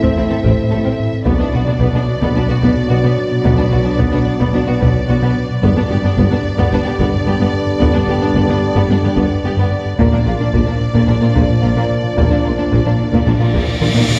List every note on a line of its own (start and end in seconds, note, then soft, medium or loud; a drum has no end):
0.00 0.12 A2 medium
0.00 0.09 A2 medium
0.00 1.23 E3 medium
0.00 1.23 A3 medium
0.00 1.24 A3 medium
0.00 0.12 A3 medium
0.00 1.23 C4 medium
0.00 0.08 C4 medium
0.00 1.23 E4 medium
0.00 1.23 E5 medium
0.00 taiko medium
0.04 0.10 C4 medium
0.17 0.23 A1 soft
0.17 0.25 A2 medium
0.17 0.23 A2 soft
0.17 0.25 C4 medium
0.17 0.23 C4 soft
0.17 0.23 E4 soft
0.30 0.36 A2 soft
0.30 0.39 A2 medium
0.30 0.35 C4 soft
0.30 0.36 A4 soft
0.30 0.39 A4 medium
0.44 0.49 A1 medium
0.44 0.50 A1 medium
0.44 0.50 A2 medium
0.44 0.53 A2 medium
0.44 0.53 A3 medium
0.44 0.50 C4 medium
0.44 taiko medium
0.58 0.67 A2 medium
0.71 0.77 A1 soft
0.71 0.78 A1 soft
0.71 0.77 A2 soft
0.71 0.80 A2 medium
0.71 0.77 C4 soft
0.71 0.77 A4 soft
0.71 0.80 A4 medium
0.84 0.91 A2 medium
0.84 0.94 A2 medium
0.84 0.94 A3 medium
0.84 0.90 C4 medium
0.84 0.91 C4 medium
1.00 1.08 A2 medium
1.13 1.22 A2 medium
1.25 1.32 B1 medium
1.25 1.31 B2 medium
1.25 5.46 B2 medium
1.25 1.35 B2 medium
1.25 5.63 F#3 medium
1.25 5.46 F#3 medium
1.25 1.31 B3 medium
1.25 1.34 B3 medium
1.25 1.32 B3 medium
1.25 5.46 B3 medium
1.25 5.63 B3 medium
1.25 5.46 D4 medium
1.25 5.63 F#4 medium
1.25 5.59 D5 medium
1.25 5.63 D5 medium
1.25 taiko medium
1.39 1.45 B2 soft
1.39 1.49 B2 medium
1.39 1.45 B3 soft
1.39 1.48 D4 medium
1.39 1.46 D4 soft
1.52 1.59 B1 medium
1.52 1.60 B1 soft
1.52 1.59 B2 soft
1.52 1.63 B2 medium
1.52 1.58 B3 soft
1.52 1.60 F#4 soft
1.52 1.62 B4 medium
1.66 1.73 B2 medium
1.66 1.76 B2 medium
1.66 1.73 B3 soft
1.66 1.75 D4 soft
1.66 1.73 D4 soft
1.80 1.86 B1 medium
1.80 1.89 B2 medium
1.80 1.86 B2 medium
1.80 1.88 B3 medium
1.80 1.86 B3 medium
1.80 1.87 B3 medium
1.80 taiko medium
1.94 2.03 B2 medium
1.94 2.00 B2 soft
1.94 2.00 B3 soft
1.94 2.02 D4 medium
1.94 2.00 D4 medium
2.08 2.17 B2 medium
2.21 2.30 B2 medium
2.21 2.28 B2 medium
2.21 2.30 B3 medium
2.21 2.27 B3 medium
2.21 2.28 B3 medium
2.21 taiko medium
2.35 2.41 B1 soft
2.35 2.42 B1 soft
2.35 2.44 B2 medium
2.35 2.41 B2 medium
2.35 2.41 B3 medium
2.35 2.43 D4 medium
2.35 2.41 D4 medium
2.48 2.55 B2 medium
2.48 2.58 B2 medium
2.48 2.55 B3 soft
2.48 2.54 F#4 soft
2.48 2.57 B4 medium
2.62 2.68 B1 medium
2.62 2.69 B1 medium
2.62 2.71 B2 medium
2.62 2.69 B2 medium
2.62 2.71 B3 medium
2.62 2.68 B3 medium
2.62 2.69 B3 medium
2.62 taiko medium
2.77 2.85 B2 medium
2.89 2.95 B1 medium
2.89 2.96 B1 soft
2.89 2.95 B2 soft
2.89 2.99 B2 medium
2.89 2.96 B3 medium
2.89 2.95 F#4 soft
2.89 2.99 B4 medium
3.03 3.10 B2 medium
3.03 3.13 B2 medium
3.03 3.09 B3 medium
3.03 3.12 B3 medium
3.03 3.10 B3 medium
3.18 3.26 B2 medium
3.32 3.40 B2 medium
3.44 3.51 B1 medium
3.44 3.50 B2 medium
3.44 3.53 B2 medium
3.44 3.50 B3 medium
3.44 3.53 B3 medium
3.44 3.50 B3 medium
3.44 taiko medium
3.58 3.64 B2 soft
3.58 3.67 B2 medium
3.58 3.64 B3 soft
3.58 3.63 D4 soft
3.58 3.67 D4 medium
3.71 3.78 B1 soft
3.71 3.77 B2 soft
3.71 3.81 B2 medium
3.71 3.77 B3 soft
3.71 3.77 F#4 soft
3.71 3.81 B4 medium
3.85 3.91 B2 medium
3.85 3.95 B2 medium
3.85 3.91 B3 medium
3.85 3.90 D4 soft
3.85 3.94 D4 medium
3.98 4.05 B1 medium
3.98 4.08 B2 medium
3.98 4.05 B2 medium
3.98 4.04 B3 medium
3.98 4.08 B3 medium
3.98 4.05 B3 medium
3.98 taiko medium
4.12 4.22 B2 medium
4.12 4.19 B2 medium
4.12 4.18 B3 soft
4.12 4.19 D4 medium
4.12 4.21 D4 medium
4.27 4.35 B2 medium
4.40 4.49 B2 medium
4.40 4.46 B2 medium
4.40 4.45 B3 medium
4.40 4.48 B3 medium
4.40 4.46 B3 medium
4.40 taiko medium
4.54 4.59 B1 soft
4.54 4.60 B1 medium
4.54 4.60 B2 soft
4.54 4.63 B2 medium
4.54 4.59 B3 medium
4.54 4.59 D4 medium
4.54 4.63 D4 medium
4.67 4.73 B2 medium
4.67 4.77 B2 medium
4.67 4.74 B3 soft
4.67 4.72 F#4 soft
4.67 4.76 B4 medium
4.80 4.87 B1 medium
4.80 4.87 B2 medium
4.80 4.90 B2 medium
4.80 4.86 B3 medium
4.80 4.89 B3 medium
4.80 4.87 B3 medium
4.80 taiko medium
4.97 5.04 B2 medium
5.08 5.14 B1 medium
5.08 5.14 B2 medium
5.08 5.18 B2 medium
5.08 5.15 B3 medium
5.08 5.14 F#4 medium
5.08 5.17 B4 medium
5.22 5.28 B2 medium
5.22 5.31 B2 medium
5.22 5.28 B3 medium
5.22 5.30 B3 medium
5.22 5.29 B3 medium
5.37 5.45 B2 medium
5.51 5.59 B2 medium
5.63 5.68 G1 medium
5.63 5.69 G1 medium
5.63 5.68 G2 medium
5.63 5.72 G2 medium
5.63 9.96 D3 medium
5.63 5.72 G3 medium
5.63 9.96 G3 medium
5.63 10.00 G3 medium
5.63 5.69 B3 medium
5.63 9.96 B3 medium
5.63 5.69 B3 medium
5.63 9.96 D4 medium
5.63 9.98 D4 medium
5.63 9.95 D5 medium
5.63 9.96 D5 medium
5.63 taiko medium
5.76 5.82 G2 medium
5.76 5.85 G2 medium
5.76 5.85 B3 medium
5.76 5.82 B3 medium
5.76 5.82 D4 medium
5.90 5.95 G1 medium
5.90 5.96 G1 medium
5.90 5.96 G2 soft
5.90 5.99 G2 medium
5.90 5.96 B3 medium
5.90 5.96 G4 soft
5.90 5.99 G4 medium
6.03 6.09 G2 medium
6.03 6.13 G2 medium
6.03 6.09 B3 medium
6.03 6.13 B3 soft
6.03 6.10 D4 medium
6.17 6.23 G1 medium
6.17 6.23 G2 medium
6.17 6.27 G2 medium
6.17 6.26 G3 medium
6.17 6.23 B3 medium
6.17 6.24 B3 medium
6.17 taiko medium
6.31 6.37 G2 medium
6.31 6.40 G2 medium
6.31 6.36 B3 soft
6.31 6.40 B3 medium
6.31 6.37 D4 medium
6.45 6.53 G2 medium
6.58 6.67 G2 medium
6.58 6.64 G2 medium
6.58 6.67 G3 medium
6.58 6.64 B3 medium
6.58 taiko medium
6.71 6.77 G1 soft
6.71 6.78 G1 medium
6.71 6.80 G2 medium
6.71 6.78 G2 medium
6.71 6.80 B3 medium
6.71 6.78 B3 medium
6.71 6.78 D4 medium
6.85 6.93 G2 medium
6.85 6.91 G2 medium
6.85 6.92 B3 medium
6.85 6.91 G4 soft
6.85 6.94 G4 medium
6.99 7.05 G1 medium
6.99 7.07 G2 medium
6.99 7.05 G2 medium
6.99 7.08 G3 medium
6.99 7.05 B3 medium
6.99 taiko medium
7.13 7.21 G2 medium
7.26 7.32 G1 medium
7.26 7.34 G2 medium
7.26 7.32 G2 medium
7.26 7.32 B3 medium
7.26 7.32 G4 medium
7.26 7.35 G4 medium
7.39 7.48 G2 medium
7.39 7.46 G2 medium
7.39 7.49 G3 medium
7.39 7.46 B3 medium
7.53 7.61 G2 medium
7.67 7.75 G2 medium
7.80 7.86 G1 medium
7.80 7.87 G1 medium
7.80 7.89 G2 medium
7.80 7.87 G2 medium
7.80 7.90 G3 medium
7.80 7.86 B3 medium
7.80 taiko medium
7.94 8.03 G2 medium
7.94 8.00 G2 medium
7.94 8.00 B3 medium
7.94 8.03 B3 medium
7.94 8.00 D4 medium
8.08 8.14 G1 medium
8.08 8.14 G2 soft
8.08 8.17 G2 medium
8.08 8.15 B3 medium
8.08 8.17 G4 medium
8.08 8.15 G4 medium
8.21 8.30 G2 medium
8.21 8.28 G2 medium
8.21 8.27 B3 medium
8.21 8.31 B3 medium
8.21 8.28 D4 soft
8.35 8.41 G1 medium
8.35 8.44 G2 medium
8.35 8.41 G2 medium
8.35 8.44 G3 medium
8.35 8.41 B3 medium
8.35 8.42 B3 medium
8.35 taiko medium
8.49 8.57 G2 medium
8.49 8.55 G2 medium
8.49 8.54 B3 medium
8.49 8.58 B3 medium
8.49 8.55 D4 soft
8.62 8.71 G2 medium
8.76 8.84 G2 medium
8.76 8.82 G2 medium
8.76 8.85 G3 medium
8.76 8.82 B3 medium
8.76 taiko medium
8.89 8.95 G1 medium
8.89 8.96 G1 soft
8.89 8.98 G2 medium
8.89 8.96 G2 medium
8.89 8.96 B3 soft
8.89 8.99 B3 medium
8.89 8.96 D4 medium
9.03 9.11 G2 medium
9.03 9.10 G2 medium
9.03 9.09 B3 medium
9.03 9.12 G4 medium
9.03 9.10 G4 medium
9.16 9.22 G1 medium
9.16 9.23 G1 medium
9.16 9.25 G2 medium
9.16 9.23 G2 medium
9.16 9.26 G3 medium
9.16 9.22 B3 medium
9.16 9.23 B3 medium
9.16 taiko medium
9.30 9.39 G2 medium
9.44 9.50 G1 soft
9.44 9.50 G1 medium
9.44 9.52 G2 medium
9.44 9.50 G2 medium
9.44 9.49 B3 medium
9.44 9.53 G4 medium
9.44 9.51 G4 medium
9.57 9.66 G2 medium
9.57 9.63 G2 medium
9.57 9.67 G3 medium
9.57 9.63 B3 medium
9.57 9.65 B3 medium
9.72 9.80 G2 medium
9.86 9.94 G2 medium
9.98 10.05 A#1 medium
9.98 14.04 A#2 medium
9.98 10.07 A#2 medium
9.98 10.05 A#2 medium
9.98 14.04 F3 medium
9.98 14.19 F3 medium
9.98 10.04 A#3 medium
9.98 10.07 A#3 medium
9.98 14.19 A#3 medium
9.98 10.05 A#3 medium
9.98 14.05 A#3 medium
9.98 14.04 D4 medium
9.98 14.19 D4 medium
9.98 14.19 D5 medium
9.98 14.12 D5 medium
9.98 taiko medium
10.12 10.18 A#2 medium
10.12 10.21 A#2 medium
10.12 10.18 A#3 soft
10.12 10.21 D4 medium
10.12 10.18 D4 soft
10.25 10.32 A#1 medium
10.25 10.32 A#2 soft
10.25 10.35 A#2 medium
10.25 10.31 A#3 soft
10.25 10.32 F4 medium
10.25 10.35 A#4 medium
10.39 10.45 A#2 medium
10.39 10.49 A#2 medium
10.39 10.45 A#3 medium
10.39 10.45 D4 soft
10.39 10.49 D4 medium
10.52 10.59 A#1 medium
10.52 10.60 A#1 medium
10.52 10.59 A#2 medium
10.52 10.62 A#2 medium
10.52 10.58 A#3 medium
10.52 10.59 A#3 medium
10.52 10.62 A#3 medium
10.52 taiko medium
10.66 10.76 A#2 medium
10.66 10.73 A#2 soft
10.66 10.71 A#3 soft
10.66 10.72 D4 soft
10.66 10.76 D4 medium
10.81 10.89 A#2 medium
10.94 11.02 A#2 medium
10.94 11.00 A#2 medium
10.94 10.99 A#3 medium
10.94 11.03 A#3 medium
10.94 11.00 A#3 medium
10.94 taiko medium
11.07 11.14 A#1 soft
11.07 11.16 A#2 medium
11.07 11.14 A#2 soft
11.07 11.13 A#3 soft
11.07 11.16 D4 medium
11.07 11.14 D4 soft
11.21 11.28 A#2 soft
11.21 11.31 A#2 medium
11.21 11.27 A#3 soft
11.21 11.28 F4 soft
11.21 11.30 A#4 medium
11.35 11.41 A#1 medium
11.35 11.41 A#2 medium
11.35 11.44 A#2 medium
11.35 11.40 A#3 medium
11.35 11.44 A#3 medium
11.35 taiko medium
11.50 11.58 A#2 medium
11.62 11.69 A#1 soft
11.62 11.71 A#2 medium
11.62 11.69 A#2 soft
11.62 11.68 A#3 medium
11.62 11.67 F4 soft
11.62 11.71 A#4 medium
11.76 11.82 A#2 medium
11.76 11.85 A#2 medium
11.76 11.82 A#3 medium
11.76 11.85 A#3 medium
11.90 11.98 A#2 medium
12.04 12.12 A#2 medium
12.17 12.23 A#1 medium
12.17 12.24 A#1 medium
12.17 12.26 A#2 medium
12.17 12.24 A#2 medium
12.17 12.22 A#3 medium
12.17 12.23 A#3 medium
12.17 12.26 A#3 medium
12.17 taiko medium
12.17 cymbal swell medium
12.31 12.37 A#2 soft
12.31 12.39 A#2 medium
12.31 12.36 A#3 soft
12.31 12.36 D4 soft
12.31 12.40 D4 medium
12.44 12.50 A#1 soft
12.44 12.51 A#1 soft
12.44 12.50 A#2 soft
12.44 12.53 A#2 medium
12.44 12.49 A#3 soft
12.44 12.50 F4 soft
12.44 12.53 A#4 medium
12.57 12.67 A#2 medium
12.57 12.64 A#2 soft
12.57 12.64 A#3 soft
12.57 12.63 D4 soft
12.57 12.67 D4 medium
12.71 12.77 A#1 medium
12.71 12.77 A#2 medium
12.71 12.80 A#2 medium
12.71 12.77 A#3 medium
12.71 12.81 A#3 medium
12.71 12.78 A#3 medium
12.71 taiko medium
12.85 12.94 A#2 medium
12.85 12.91 A#2 soft
12.85 12.91 A#3 soft
12.85 12.91 D4 soft
12.85 12.95 D4 medium
12.99 13.07 A#2 medium
13.11 13.20 A#2 medium
13.11 13.19 A#2 medium
13.11 13.17 A#3 medium
13.11 13.18 A#3 medium
13.11 13.22 A#3 medium
13.11 taiko medium
13.26 13.32 A#1 soft
13.26 13.35 A#2 medium
13.26 13.32 A#2 soft
13.26 13.32 A#3 soft
13.26 13.32 D4 soft
13.26 13.36 D4 medium
13.26 taiko low-mid medium
13.39 13.48 A#2 medium
13.39 13.46 A#2 soft
13.39 13.45 A#3 soft
13.39 13.45 F4 soft
13.39 13.50 A#4 medium
13.53 13.59 A#1 medium
13.53 13.60 A#1 medium
13.53 13.62 A#2 medium
13.53 13.60 A#2 medium
13.53 13.59 A#3 medium
13.53 13.63 A#3 medium
13.53 taiko medium
13.67 13.76 A#2 medium
13.80 13.86 A#1 soft
13.80 13.88 A#1 soft
13.80 13.89 A#2 medium
13.80 13.87 A#2 soft
13.80 13.87 A#3 medium
13.80 13.87 F4 soft
13.80 13.90 A#4 medium
13.80 taiko mid medium
13.94 14.03 A#2 medium
13.94 14.01 A#2 medium
13.94 13.99 A#3 medium
13.94 14.01 A#3 medium
13.94 14.04 A#3 medium
13.94 taiko high medium
14.08 14.16 A#2 medium
14.08 taiko low-mid medium